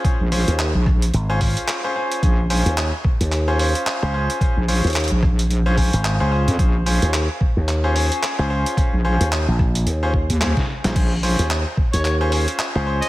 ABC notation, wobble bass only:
X:1
M:4/4
L:1/16
Q:"Swing 16ths" 1/4=110
K:Bbm
V:1 name="Wobble bass" clef=bass
z B,,,2 z2 B,,,3 z8 | B,,,3 z12 z | z B,,,2 z2 B,,,6 z4 F,, | B,,,3 z12 z |
z B,,,2 z8 E,,2 z3 | B,,,3 z12 z |]